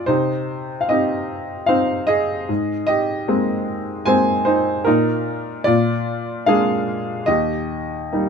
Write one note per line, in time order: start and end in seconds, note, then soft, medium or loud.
0.00 0.11 A#2 soft
0.00 0.11 F4 soft
0.00 0.11 D5 medium
0.06 2.44 C3 soft
0.06 0.80 D#4 medium
0.06 0.85 C5 medium
0.81 0.89 F5 soft
0.89 1.67 C4 soft
0.89 1.67 D#4 soft
0.89 1.66 G4 soft
0.89 1.71 D#5 medium
1.66 2.46 C4 soft
1.66 2.46 D#4 soft
1.66 2.06 C5 medium
1.66 2.09 F5 medium
2.07 2.84 G#4 soft
2.07 2.85 D#5 medium
2.49 4.82 G#2 soft
2.87 4.02 G4 medium
2.87 4.09 D#5 medium
3.28 4.04 G#3 soft
3.28 4.04 A#3 soft
3.28 4.04 C4 soft
4.06 4.84 G#3 soft
4.06 4.84 A#3 soft
4.06 4.84 C4 soft
4.06 4.43 C5 medium
4.06 4.43 G#5 medium
4.45 4.83 D#4 soft
4.45 4.86 C5 medium
4.84 5.64 A#2 medium
4.84 5.63 D#4 medium
4.84 5.68 A#4 medium
5.64 7.25 A#2 medium
5.64 6.43 F4 medium
5.64 6.49 D5 medium
6.46 7.26 G#3 soft
6.46 7.26 A#3 soft
6.46 7.26 D4 soft
6.46 7.25 G#4 medium
6.46 7.24 F5 medium
7.26 8.29 D#2 soft
7.26 8.29 G4 soft
7.26 8.29 D#5 medium
8.12 8.29 G3 soft
8.12 8.29 A#3 soft
8.12 8.29 D#4 soft